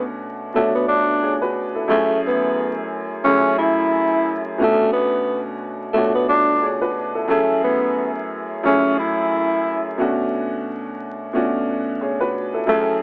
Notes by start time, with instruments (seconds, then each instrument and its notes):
Already playing: upright piano B2 A3 C#4 D4 F#4
0.54 upright piano B2 A3 D4 F#4 C#5, tenor saxophone A3
0.75 tenor saxophone B3
0.88 tenor saxophone D4
1.23 upright piano G#4 C#5
1.42 upright piano F#4 B4
1.75 upright piano E4 A4
1.88 upright piano F#2 A3 C#4 E4 G#4, tenor saxophone A3
2.27 tenor saxophone B3
3.24 upright piano F#2 A3 C#4 E4 G#4, tenor saxophone C#4
3.58 tenor saxophone E4
4.58 upright piano B2 A3 C#4 D4 F#4
4.63 tenor saxophone A3
4.93 tenor saxophone B3
5.93 upright piano B2 A3 D4 C#5, tenor saxophone A3
5.97 upright piano F#4
6.15 tenor saxophone B3
6.29 tenor saxophone D4
6.62 upright piano G#4 C#5
6.81 upright piano F#4 B4
7.15 upright piano E4 A4
7.28 upright piano F#2 A3 C#4 E4 G#4, tenor saxophone A3
7.64 tenor saxophone B3
8.63 upright piano F#2 A3 C#4 E4 G#4, tenor saxophone C#4
8.99 tenor saxophone E4
9.98 upright piano B2 A3 C#4 D4 F#4
11.33 upright piano B2 A3 C#4 D4 F#4
12.01 upright piano G#4 C#5
12.21 upright piano F#4 B4
12.54 upright piano E4 A4
12.67 upright piano F#2 A3 C#4 E4 G#4, tenor saxophone A3